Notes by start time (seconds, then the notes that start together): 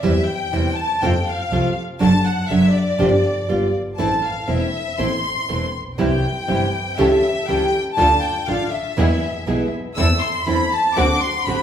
0.02 E2 C3 E3 G3 C4 E4 E5
0.26 G5
0.52 E2 C3 E3 G3 C4 E4
0.77 A5
1.02 F2 C3 F3 A3 C4 F4 G5
1.28 F5
1.51 C2 C3 F3 A3 C4 F4
1.99 F#1 C3 F#3 A3 D4 F#4 A5
2.25 F#5
2.48 F#1 C3 F#3 A3 D4 F#4 E5
2.72 D5
2.98 G1 C3 F3 C4 D4 G4
3.48 G1 G3 B3 F4
3.75 G1
3.98 A1 E3 A3 C4 E4 A5
4.25 F5
4.47 E1 E3 A3 C4 E4 E5
4.98 A1 E3 A3 C4 E4 C6
5.49 E1 E3 A3 C4 E4
5.75 A#1
5.98 C2 C3 E3 G3 C4 E4 G4 G5
6.48 G1 C3 E3 G3 C4 E4 G4
6.98 C#2 C#3 E3 A3 C#4 G4 A4 E5
7.48 C#2 C#3 E3 A3 C#4 G4 A4 G5
7.96 D2 D3 A3 D4 F4 A4 A5
8.23 G5
8.47 A1 D3 A3 D4 F4 A4 F5
8.71 E5
8.97 E2 B2 E3 G#3 B3 E4 G#4
9.46 B1 B2 E3 G#3 B3 E4 G#4
9.95 E2 E3 A3 C4 E4 A4 E6
10.21 C6
10.45 E2 E3 A3 C4 E4 A4 B5
10.72 A5
10.95 D2 D3 A3 C4 D4 F#4 D6
11.21 C6
11.46 A1 D3 A3 C4 D4 F#4 B5